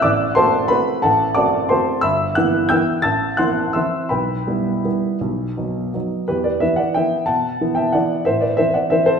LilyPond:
<<
  \new Staff \with { instrumentName = "Upright piano" } { \time 3/4 \key e \minor \tempo 4 = 178 <d'' d'''>4 <c'' a'' c'''>4 <b' b''>4 | <a' fis'' a''>4 <d'' a'' d'''>4 <c'' a'' c'''>4 | <e'' b'' e'''>4 <fis'' fis'''>4 <g'' e''' g'''>4 | <a'' e''' a'''>4 <fis'' c''' fis'''>4 <e'' c''' e'''>4 |
<b' g'' b''>2.~ | <b' g'' b''>2 r4 | <g' b'>8 <b' d''>8 <b' e''>8 <d'' fis''>8 <e'' g''>4 | <fis'' a''>4. <e'' g''>8 <d'' fis''>4 |
<c'' e''>8 <b' d''>8 <c'' e''>8 <d'' fis''>8 <c'' e''>8 <a' c''>8 | }
  \new Staff \with { instrumentName = "Upright piano" } { \time 3/4 \key e \minor a,,4 <a c' fis'>4 <a c' fis'>4 | a,,4 <a c' fis'>4 <a c' fis'>4 | g,,4 <e b e'>4 <e b e'>4 | a,,4 <e c' e'>4 <e c' e'>4 |
b,,4 <g b e'>4 <g b e'>4 | b,,4 <fis b dis'>4 <fis b dis'>4 | e,4 <e b e'>4 <e b e'>4 | b,4 <e b e'>4 <e b e'>4 |
a,4 <e c' e'>4 <e c' e'>4 | }
>>